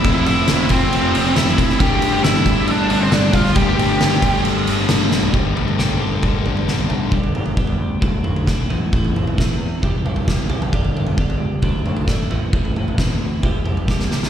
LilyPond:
<<
  \new Staff \with { instrumentName = "Lead electric guitar" } { \time 4/4 \key f \lydian \tempo 4 = 134 <e' e''>8 <e' e''>4 <c' c''>4. <e' e''>4 | <g' g''>4 <e' e''>4 <d' d''>8 <d' d''>16 <c' c''>16 <d' d''>8 <f' f''>8 | <g' g''>2 r2 | r1 |
\key g \major r1 | r1 | r1 | r1 | }
  \new Staff \with { instrumentName = "Clean electric guitar" } { \time 4/4 \key f \lydian r1 | r1 | r1 | g8 a8 d'8 g'8 d'8 g8 d'8 a8 |
\key g \major <g, d g b d' g'>8 <g b d' g'>8 <g b d' g'>4 <d fis a d' e'>8 <a d' e'>8 <fis a d' e'>8 <a, e b c' e'>8 | <a, e b c' e'>8 <b c' e'>8 <e b c' e'>4 <c e g e' g'>8 <g e' g'>8 <e g e' g'>8 <g e' g'>8 | <g, d g b d' g'>8 <g b d' g'>8 <g b d' g'>4 <d fis a d' e'>8 <a d' e'>8 <fis a d' e'>8 <a, e b c' e'>8 | <a, e b c' e'>8 <b c' e'>8 <e b c' e'>4 <c e g e' g'>8 <g e' g'>8 <e g e' g'>8 <g e' g'>8 | }
  \new Staff \with { instrumentName = "Distorted electric guitar" } { \time 4/4 \key f \lydian <f a c' f'>4. <f a c' f'>2~ <f a c' f'>8 | <g a d' g'>4. <g a d' g'>2~ <g a d' g'>8 | <g a d' g'>4. <g a d' g'>2~ <g a d' g'>8 | r1 |
\key g \major r1 | r1 | r1 | r1 | }
  \new Staff \with { instrumentName = "Distorted electric guitar" } { \clef bass \time 4/4 \key f \lydian <f, c f>1 | <g, d g>1 | <g, d g>1 | <g, d g>8 <g, d g>8 <g, d g>8 <g, d g>8 <g, d g>8 <g, d g>8 <g, d g>8 <g, d g>8 |
\key g \major r1 | r1 | r1 | r1 | }
  \new Staff \with { instrumentName = "Picked electric bass" } { \clef bass \time 4/4 \key f \lydian f,,8 f,,8 f,,4 f,,8 f,,8 f,,8 f,,8 | g,,8 g,,8 g,,4 g,,8 g,,8 g,,8 g,,8 | g,,8 g,,8 g,,4 g,,8 g,,8 g,,8 g,,8 | g,,8 g,,8 g,,4 g,,8 g,,8 g,,8 g,,8 |
\key g \major g,,8 g,,8 g,,8 d,8 d,8 d,8 b,,8 a,,8 | a,,8 a,,8 a,,8 e,8 c,8 c,8 c,8 c,8 | g,,8 g,,8 g,,8 cis,8 d,8 d,8 aes,,8 a,,8 | a,,8 a,,8 a,,8 d,8 c,8 c,8 c,8 c,8 | }
  \new DrumStaff \with { instrumentName = "Drums" } \drummode { \time 4/4 <bd cymr>8 cymr8 <cymr sn>8 <bd cymr>8 cymr8 cymr8 <cymr sn>16 sn16 <bd cymr>16 sn16 | <bd cymr>8 cymr8 <cymr sn>16 sn16 <bd cymr>8 cymr8 cymr8 <cymr sn>8 <bd cymr>16 sn16 | <bd cymr>8 cymr8 <cymr sn>16 sn16 <bd cymr>8 cymr8 cymr8 <cymr sn>8 sn16 tomfh16 | <bd tomfh>8 tomfh16 tomfh16 sn16 tomfh8. <bd tomfh>8 tomfh16 tomfh16 sn16 <tomfh toml>16 <tomfh toml>8 |
<bd tomfh>16 tomfh16 toml16 tomfh16 bd16 tomfh8. <bd tomfh>8 toml16 tomfh16 <bd sn>8 tomfh8 | <bd tomfh>16 tomfh16 toml16 tomfh16 <bd sn>4 <bd tomfh>8 toml16 tomfh16 <bd sn>16 tomfh16 <tomfh toml>16 <tomfh toml>16 | <bd tomfh>16 tomfh16 toml16 tomfh16 bd16 tomfh8. <bd tomfh>8 toml16 tomfh16 <bd sn>8 tomfh8 | <bd tomfh>16 tomfh16 toml16 tomfh16 <bd sn>4 <bd tomfh>8 toml16 tomfh16 <bd sn>16 sn16 sn16 sn16 | }
>>